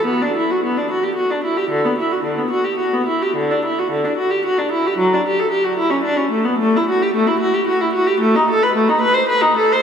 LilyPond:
\new Staff \with { instrumentName = "Viola" } { \time 3/4 \key b \minor \tempo 4 = 111 b16 d'16 e'16 fis'16 b16 d'16 fis'16 g'16 fis'16 d'16 e'16 g'16 | d16 b16 e'16 fis'16 d16 b16 fis'16 g'16 fis'16 b16 e'16 g'16 | d16 d'16 e'16 fis'16 d16 d'16 fis'16 g'16 fis'16 d'16 e'16 g'16 | fis16 d'16 g'16 a'16 g'16 fis'16 e'16 cis'16 d'16 cis'16 a16 b16 |
\key e \minor a16 e'16 fis'16 g'16 a16 e'16 fis'16 g'16 fis'16 e'16 fis'16 g'16 | a16 dis'16 a'16 b'16 a16 dis'16 b'16 c''16 b'16 dis'16 a'16 c''16 | }